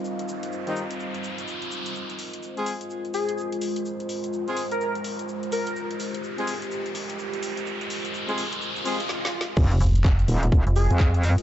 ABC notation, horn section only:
X:1
M:4/4
L:1/16
Q:"Swing 16ths" 1/4=126
K:Fm
V:1 name="Horn section"
z4 z [E,G,CE] z8 z2 | z4 z [A,CFA] z8 z2 | z4 z [A,CFA] z8 z2 | z4 z [A,CFA] z8 z2 |
z4 z [A,CFA] z4 [A,CFA] z4 z | z16 |]